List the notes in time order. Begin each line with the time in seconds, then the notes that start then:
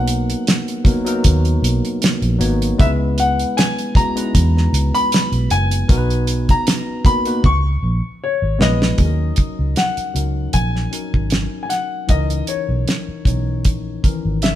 Already playing: B1 F#3 A#3 B3 D#4 A#4 F#5
0.08 closed hi-hat
0.30 closed hi-hat
0.47 snare, closed hi-hat
0.68 closed hi-hat
0.84 F#3 A#3 B3 D#4 A#4, kick, closed hi-hat
1.05 F#3 A#3 B3 D#4 A#4, closed hi-hat
1.24 D#2, kick, closed hi-hat
1.45 closed hi-hat
1.62 B1, closed hi-hat
1.85 closed hi-hat
2.02 snare, closed hi-hat
2.22 A#1, closed hi-hat
2.38 G#1 F#3 A#3 B3 D#4 C#5, closed hi-hat
2.62 closed hi-hat
2.78 C#2 G#3 B3 C#4 D#4 B4 E5, kick, closed hi-hat
2.87 E4
3.18 F#5, closed hi-hat
3.40 closed hi-hat
3.57 G#5, snare, closed hi-hat
3.78 closed hi-hat
3.95 G#3 B3 C#4 E4 F#4 A#5, kick, closed hi-hat
4.16 G#3 B3 C#4 D#4 B4, closed hi-hat
4.24 E4
4.35 E2, kick, closed hi-hat
4.57 snare
4.73 C#2, closed hi-hat
4.94 B5, closed hi-hat
5.12 snare, closed hi-hat
5.32 B1, closed hi-hat
5.50 F#1 G#5, closed hi-hat
5.71 closed hi-hat
5.88 B1 B3 D#4 F#4 A#4, kick, closed hi-hat
5.98 B4
6.10 closed hi-hat
6.27 closed hi-hat
6.49 A#5, kick, closed hi-hat
6.67 snare, closed hi-hat
7.04 A#3 B3 D#4 F#4 A#4 B5, kick, closed hi-hat
7.25 A#3 B3 D#4 F#4 B4, closed hi-hat
7.44 C#2 C#6, kick
7.83 A#1
8.24 C#5
8.42 G#1
8.59 A#1 G#3 B3 C#4 E4 B4 D#5, snare
8.82 snare
8.97 D#2 F#3 C#4 D#4 G#4, kick, closed hi-hat
9.05 A#4
9.36 kick, closed hi-hat
9.59 C#2
9.76 F#5, snare, closed hi-hat
9.97 muted fingered electric bass stroke, closed hi-hat
10.14 C#2 F#3 C#4 D#4 A#4, closed hi-hat
10.53 A#1 G#5, kick, closed hi-hat
10.76 snare
10.91 F#3 C#4 D#4 A#4, closed hi-hat
11.14 G#1, kick
11.30 snare, closed hi-hat
11.63 G#5
11.70 F#5, snare, closed hi-hat
12.08 C#2 E3 C#4 D#4 A#4 D#5, kick, closed hi-hat
12.30 closed hi-hat
12.47 C#5, closed hi-hat
12.69 B1
12.88 snare, closed hi-hat
13.08 muted fingered electric bass stroke
13.25 B1 E3 C#4 D#4 C#5, kick, closed hi-hat
13.65 A#1, kick, closed hi-hat
14.03 D#3 C#4 A#4, kick, closed hi-hat
14.09 E3
14.25 G#1
14.42 E5, snare, closed hi-hat